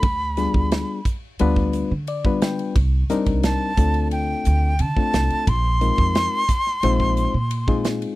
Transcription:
<<
  \new Staff \with { instrumentName = "Flute" } { \time 4/4 \key g \phrygian \tempo 4 = 88 b''4. r2 r8 | r4 a''4 g''4 a''4 | c'''2.~ c'''8 r8 | }
  \new Staff \with { instrumentName = "Reed electric piano" } { \time 4/4 \key g \phrygian << { r2. d''8 g''8 | r1 | r1 | } \\ { r8 <g b d' f' aes'>4 r8 <g b d' f' b'>8. r8 <g b d' f' b'>8. | r8 <g c' d' ees' bes'>4 <a c' d' f' a'>4. r16 <a c' d' f' a'>8. | r8 <aes c' ees' f' bes'>4 r8 <aes c' ees' f' c''>8. r8 <aes c' ees' f' aes'>8. | } >> }
  \new Staff \with { instrumentName = "Upright bass" } { \clef bass \time 4/4 \key g \phrygian d,8. d,8 r8. d,8. d4~ d16 | c,8 r16 c,8 r16 d,4 d,8 d16 r16 c,16 r16 | bes,,8. f,8 r8. bes,,8. bes,4~ bes,16 | }
  \new DrumStaff \with { instrumentName = "Drums" } \drummode { \time 4/4 <bd cymr>8 <hhp cymr sn>16 bd16 <cymr sn>8 <hhp bd cymr>8 cymr16 bd16 <hhp cymr>8 cymr16 bd16 <hhp cymr sn>16 cymr16 | <bd cymr>8 <hhp cymr sn>16 <bd cymr>16 <cymr sn>8 <hhp bd cymr>16 cymr16 cymr8 <hhp cymr>8 cymr16 bd16 <hhp cymr sn>16 cymr16 | <bd cymr>8 <hhp cymr>16 bd16 <cymr sn>8 <hhp bd cymr sn>16 sn16 cymr16 bd16 <hhp cymr>8 cymr16 bd16 <hhp cymr sn>16 cymr16 | }
>>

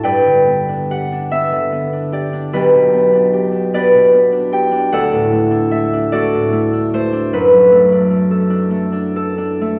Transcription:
<<
  \new Staff \with { instrumentName = "Harp" } { \time 6/8 \key g \major \tempo 4. = 49 << { g''4 fis''8 e''4 d''8 | b'4. d''4 g''8 | fis''4 e''8 d''4 c''8 | b'2. | } \\ { <b' d''>2. | <d' g'>4. <g' b'>4. | <a' d''>4. <fis' a'>4.~ | <fis' a'>2. | } >> }
  \new Staff \with { instrumentName = "Harp" } { \time 6/8 \key g \major <g, d'>16 d16 b16 d'16 g'16 d'16 b16 d16 b16 d'16 g'16 d'16 | b,,16 b,16 b16 d'16 g'16 d'16 b16 b,16 b16 d'16 g'16 d'16 | d,16 a,16 a16 d'16 a16 d'16 a16 a,16 a16 d'16 a16 d'16 | fis,16 fis16 a16 d'16 a16 a'16 d'16 a16 d'16 a'16 d'16 a16 | }
>>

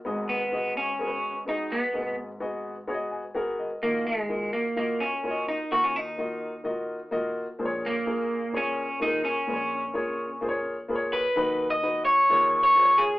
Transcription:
<<
  \new Staff \with { instrumentName = "Grand piano" } { \time 4/4 \key ees \minor \tempo 4 = 127 <ces' ges' aes' ees''>8 r8 <ces' ges' aes' ees''>8 r8 <ces' ges' aes' bes' ces''>8 r8 <ces' ges' aes' ees''>8 r8 | <bes ces' ges' aes' ees''>8 r8 <ces' ges' aes' ees''>8 r8 <ces' ges' aes' des'' ees''>8 aes''8 <ces' ges' aes' bes' ges''>8 ees''8 | <bes f' ges' ees''>8 r8 <bes f' ges' ees''>8 r8 <bes f' ges' ees''>8 r8 <bes f' ges' des'' ees''>8 r8 | <bes f' ges' bes'>8 r8 <bes f' ges' ees''>8 r8 <bes f' ges' ees''>8 r8 <bes f' ges' ees''>8 r8 |
<bes f' aes' c'' des''>8 r8 <bes f' aes' bes'>8 r8 <bes f' aes' des''>8 r8 <bes f' aes' a' bes'>8 r8 | <bes f' aes' ces'' des''>8 r8 <bes f' aes' des''>8 r8 <bes f' aes' c'' des''>8 r8 <bes f' aes' ces'' des''>8 r8 | <dis' fis' b'>8 r8 <dis' fis' b'>8 r8 <f' aes' des''>8 r8 <f' aes' c'' des''>8 r8 | }
  \new Staff \with { instrumentName = "Grand piano" } { \clef bass \time 4/4 \key ees \minor <aes,, aes,>1 | <aes,, aes,>1 | <ees, ees>1 | <ees, ees>1 |
<bes,, bes,>1 | <bes,, bes,>1 | <dis, dis>2 <ees, ees>2 | }
  \new Staff \with { instrumentName = "Clean electric guitar" } { \time 4/4 \key ees \minor r8 ces'4 des'4. ees'8 ces'8~ | ces'8 r2. r8 | bes8 aes4 bes8 bes8 des'4 ees'8 | ges'16 des'16 ees'2. r8 |
r8 bes4. des'4 ees'8 des'8~ | des'2~ des'8 r4 ces''8~ | ces''8. dis''8. des''4~ des''16 des''8. aes'8 | }
>>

